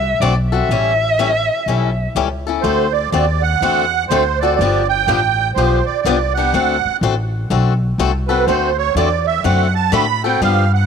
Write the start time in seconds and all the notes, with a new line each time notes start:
Already playing: C2 E5
0.20 B1 D3 A3 C4 F#4 A4 D5
0.51 C4 F#4 A4 E5
0.69 A1 E3 G3 C#4 E4 A4
1.19 E3 G3 C#4 E4 A4
1.66 B1 E3 G3 C#4 E4 A4
2.15 C#2 E3 G3 C#4 E4 A4
2.47 C#4 E4 A4
2.62 D2 D3 A3 C4 F#4 A4 C5
2.92 D5
3.12 D#2 D3 A3 C4 F#4 A4 D5
3.42 F#5
3.61 E2 D3 A3 C4 F#4 A4
4.09 D2 D3 A3 C4 F#4 A4 C5
4.40 F#4 A4 D5
4.44 C4
4.56 G1 D5
4.61 D3 F3 B3 D4 G4
4.89 G5
5.07 A1 D3 F3 B3 D4 G4
5.55 B1 D3 F3 B3 D4 G4 C5
5.86 D5, muted upright bass stroke
6.02 C2 D3 D5
6.06 F3 B3 D4 G4
6.34 G4 F#5
6.38 B3 D4
6.53 D2 D3 A3 C4 F#4 A4
6.85 muted upright bass stroke
7.01 A1 D3 A3 C4 F#4 A4
7.50 B1 D3 A3 C4 F#4 A4
7.98 C2 D3 A3 C4 F#4 A4
8.28 C4 F#4 A4 B4
8.47 D2 D3 A3 C4 F#4 A4 C5
8.78 C#5
8.95 E2 D3 A3 C4 F#4 A4 D5
9.27 E5
9.44 F#2 D3 A3 C4 F#4 A4 F#5
9.75 A5
9.92 A2 D3 A3 C4 F#4 A4 B5
10.24 C4 F#4 A4 G5
10.41 G2 D3 F3 B3 D4 G4 F5
10.74 F#5